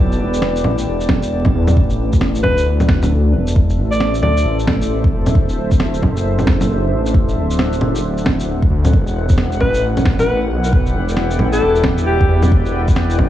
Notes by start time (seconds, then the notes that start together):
Already playing: B1 E4 A4 B4 D5 F#5 G5 A5
0.12 shaker
0.20 E1
0.34 shaker
0.42 snare
0.56 shaker
0.64 A1, low bongo
0.78 shaker
0.87 E1
1.01 shaker
1.09 kick, snare, low bongo
1.23 shaker
1.45 kick, low bongo
1.54 E2
1.67 low bongo, shaker
1.77 A1 A4, kick
1.90 shaker
2.13 kick, shaker
2.19 C5, snare
2.35 shaker
2.43 D2 B4, kick, low bongo
2.58 shaker
2.72 E5
2.80 low bongo, shaker
2.89 kick, snare
3.03 low bongo, shaker
3.34 E1
3.47 shaker
3.56 kick
3.70 shaker
3.78 A1
3.91 D5, shaker
4.00 snare
4.14 shaker
4.22 D2 D5, low bongo
4.37 shaker
4.45 A1
4.59 shaker
4.67 kick, snare, low bongo
4.82 shaker
5.04 kick
5.12 E1
5.26 low bongo, shaker
5.34 D1 D4, kick
5.49 shaker
5.71 kick, shaker
5.80 snare
5.94 shaker
6.02 F#1, kick, low bongo
6.17 shaker
6.39 low bongo, shaker
6.47 kick, snare
6.59 F#5, low bongo, shaker
6.91 A1
7.06 shaker
7.14 kick
7.28 shaker
7.36 D1
7.50 shaker
7.59 snare
7.73 shaker
7.81 F#1, low bongo
7.95 shaker
8.03 D1
8.18 shaker
8.26 kick, snare, low bongo
8.40 shaker
8.62 kick
8.70 D2
8.85 low bongo, shaker
8.93 E1 E4, kick
9.07 shaker
9.12 B4 D5
9.17 G5
9.29 kick, shaker
9.38 snare
9.52 shaker
9.61 A1 B4, kick, low bongo
9.74 shaker
9.97 low bongo, shaker
10.06 kick, snare
10.19 B4, low bongo, shaker
10.50 B1
10.64 shaker
10.73 kick
10.86 shaker
10.95 E1
11.08 shaker
11.17 snare
11.31 shaker
11.39 A1, low bongo
11.52 A4, shaker
11.61 E1
11.75 shaker
11.84 kick, snare, low bongo
11.98 shaker
12.07 G4
12.21 kick
12.28 E2
12.43 low bongo, shaker
12.52 E1, kick
12.65 shaker
12.88 kick, shaker
12.96 snare
13.10 shaker
13.19 A1, kick, low bongo